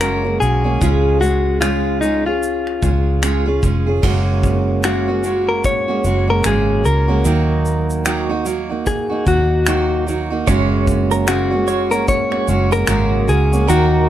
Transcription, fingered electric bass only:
0, 0, Header, 1, 2, 480
1, 0, Start_track
1, 0, Key_signature, 6, "major"
1, 0, Tempo, 804290
1, 486, Time_signature, 4, 2, 24, 8
1, 8409, End_track
2, 0, Start_track
2, 0, Title_t, "Fingered electric bass"
2, 0, Program_c, 0, 33
2, 0, Note_on_c, 0, 30, 90
2, 221, Note_off_c, 0, 30, 0
2, 249, Note_on_c, 0, 35, 80
2, 468, Note_off_c, 0, 35, 0
2, 486, Note_on_c, 0, 37, 84
2, 1663, Note_off_c, 0, 37, 0
2, 1685, Note_on_c, 0, 37, 81
2, 2143, Note_off_c, 0, 37, 0
2, 2166, Note_on_c, 0, 29, 69
2, 2387, Note_off_c, 0, 29, 0
2, 2406, Note_on_c, 0, 30, 86
2, 3584, Note_off_c, 0, 30, 0
2, 3607, Note_on_c, 0, 30, 83
2, 3828, Note_off_c, 0, 30, 0
2, 3851, Note_on_c, 0, 32, 77
2, 4071, Note_off_c, 0, 32, 0
2, 4091, Note_on_c, 0, 37, 73
2, 4311, Note_off_c, 0, 37, 0
2, 4327, Note_on_c, 0, 39, 84
2, 5505, Note_off_c, 0, 39, 0
2, 5531, Note_on_c, 0, 39, 86
2, 6226, Note_off_c, 0, 39, 0
2, 6250, Note_on_c, 0, 30, 98
2, 7426, Note_off_c, 0, 30, 0
2, 7450, Note_on_c, 0, 30, 92
2, 7671, Note_off_c, 0, 30, 0
2, 7688, Note_on_c, 0, 32, 85
2, 7910, Note_off_c, 0, 32, 0
2, 7930, Note_on_c, 0, 37, 87
2, 8150, Note_off_c, 0, 37, 0
2, 8171, Note_on_c, 0, 39, 92
2, 8409, Note_off_c, 0, 39, 0
2, 8409, End_track
0, 0, End_of_file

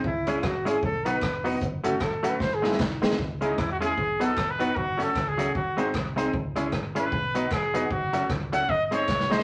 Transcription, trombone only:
0, 0, Header, 1, 2, 480
1, 0, Start_track
1, 0, Key_signature, 4, "minor"
1, 0, Tempo, 393185
1, 55, Time_signature, 4, 2, 24, 8
1, 11515, End_track
2, 0, Start_track
2, 0, Title_t, "Trombone"
2, 0, Program_c, 0, 57
2, 71, Note_on_c, 0, 64, 101
2, 549, Note_on_c, 0, 66, 101
2, 567, Note_off_c, 0, 64, 0
2, 820, Note_off_c, 0, 66, 0
2, 835, Note_on_c, 0, 68, 97
2, 1012, Note_off_c, 0, 68, 0
2, 1041, Note_on_c, 0, 69, 107
2, 1312, Note_on_c, 0, 71, 107
2, 1330, Note_off_c, 0, 69, 0
2, 1782, Note_off_c, 0, 71, 0
2, 2268, Note_on_c, 0, 66, 92
2, 2474, Note_on_c, 0, 69, 92
2, 2493, Note_off_c, 0, 66, 0
2, 2796, Note_on_c, 0, 71, 102
2, 2814, Note_off_c, 0, 69, 0
2, 2953, Note_on_c, 0, 72, 110
2, 2971, Note_off_c, 0, 71, 0
2, 3107, Note_on_c, 0, 68, 100
2, 3125, Note_off_c, 0, 72, 0
2, 3271, Note_on_c, 0, 64, 90
2, 3290, Note_off_c, 0, 68, 0
2, 3435, Note_on_c, 0, 63, 80
2, 3453, Note_off_c, 0, 64, 0
2, 3703, Note_off_c, 0, 63, 0
2, 11515, End_track
0, 0, End_of_file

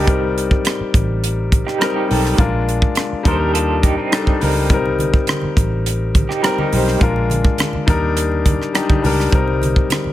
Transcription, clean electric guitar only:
0, 0, Header, 1, 2, 480
1, 0, Start_track
1, 0, Tempo, 578035
1, 61, Time_signature, 4, 2, 24, 8
1, 8409, End_track
2, 0, Start_track
2, 0, Title_t, "Clean electric guitar"
2, 0, Program_c, 0, 27
2, 0, Note_on_c, 0, 63, 58
2, 0, Note_on_c, 0, 67, 59
2, 167, Note_off_c, 0, 67, 0
2, 169, Note_off_c, 0, 63, 0
2, 1382, Note_on_c, 0, 63, 48
2, 1384, Note_on_c, 0, 67, 48
2, 1495, Note_off_c, 0, 67, 0
2, 1497, Note_off_c, 0, 63, 0
2, 1501, Note_on_c, 0, 70, 70
2, 1507, Note_on_c, 0, 67, 57
2, 1613, Note_off_c, 0, 67, 0
2, 1615, Note_off_c, 0, 70, 0
2, 1623, Note_on_c, 0, 67, 65
2, 1629, Note_on_c, 0, 63, 47
2, 1964, Note_off_c, 0, 67, 0
2, 1968, Note_off_c, 0, 63, 0
2, 2708, Note_on_c, 0, 72, 51
2, 2713, Note_on_c, 0, 69, 48
2, 2819, Note_off_c, 0, 72, 0
2, 2822, Note_off_c, 0, 69, 0
2, 2822, Note_on_c, 0, 70, 71
2, 2826, Note_on_c, 0, 67, 53
2, 2933, Note_off_c, 0, 70, 0
2, 2937, Note_on_c, 0, 69, 67
2, 2938, Note_off_c, 0, 67, 0
2, 2943, Note_on_c, 0, 65, 65
2, 3167, Note_off_c, 0, 69, 0
2, 3170, Note_off_c, 0, 65, 0
2, 3175, Note_on_c, 0, 67, 68
2, 3182, Note_on_c, 0, 63, 55
2, 3292, Note_off_c, 0, 63, 0
2, 3292, Note_off_c, 0, 67, 0
2, 3302, Note_on_c, 0, 63, 59
2, 3307, Note_on_c, 0, 60, 48
2, 3872, Note_off_c, 0, 63, 0
2, 3875, Note_off_c, 0, 60, 0
2, 5223, Note_on_c, 0, 67, 65
2, 5229, Note_on_c, 0, 63, 54
2, 5335, Note_off_c, 0, 67, 0
2, 5339, Note_on_c, 0, 70, 71
2, 5340, Note_off_c, 0, 63, 0
2, 5345, Note_on_c, 0, 67, 62
2, 5455, Note_off_c, 0, 70, 0
2, 5458, Note_off_c, 0, 67, 0
2, 5469, Note_on_c, 0, 67, 54
2, 5474, Note_on_c, 0, 63, 50
2, 5808, Note_off_c, 0, 67, 0
2, 5811, Note_off_c, 0, 63, 0
2, 8409, End_track
0, 0, End_of_file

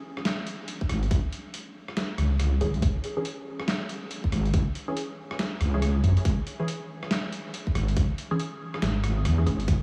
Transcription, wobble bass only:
0, 0, Header, 1, 2, 480
1, 0, Start_track
1, 0, Key_signature, 4, "minor"
1, 0, Tempo, 428571
1, 1242, Time_signature, 4, 2, 24, 8
1, 11005, End_track
2, 0, Start_track
2, 0, Title_t, "Wobble bass"
2, 0, Program_c, 0, 39
2, 1002, Note_on_c, 0, 32, 82
2, 1227, Note_off_c, 0, 32, 0
2, 1243, Note_on_c, 0, 37, 99
2, 1377, Note_off_c, 0, 37, 0
2, 2440, Note_on_c, 0, 37, 104
2, 2909, Note_off_c, 0, 37, 0
2, 2922, Note_on_c, 0, 32, 101
2, 3067, Note_on_c, 0, 37, 92
2, 3084, Note_off_c, 0, 32, 0
2, 3153, Note_off_c, 0, 37, 0
2, 3162, Note_on_c, 0, 37, 98
2, 3297, Note_off_c, 0, 37, 0
2, 4839, Note_on_c, 0, 32, 80
2, 5066, Note_off_c, 0, 32, 0
2, 5081, Note_on_c, 0, 37, 101
2, 5217, Note_off_c, 0, 37, 0
2, 6278, Note_on_c, 0, 37, 101
2, 6748, Note_off_c, 0, 37, 0
2, 6761, Note_on_c, 0, 42, 101
2, 6897, Note_off_c, 0, 42, 0
2, 7001, Note_on_c, 0, 37, 99
2, 7137, Note_off_c, 0, 37, 0
2, 8682, Note_on_c, 0, 32, 83
2, 8907, Note_off_c, 0, 32, 0
2, 8921, Note_on_c, 0, 37, 97
2, 9057, Note_off_c, 0, 37, 0
2, 9880, Note_on_c, 0, 32, 79
2, 10361, Note_on_c, 0, 40, 92
2, 10377, Note_off_c, 0, 32, 0
2, 10586, Note_off_c, 0, 40, 0
2, 10600, Note_on_c, 0, 32, 84
2, 10826, Note_off_c, 0, 32, 0
2, 10841, Note_on_c, 0, 37, 101
2, 10977, Note_off_c, 0, 37, 0
2, 11005, End_track
0, 0, End_of_file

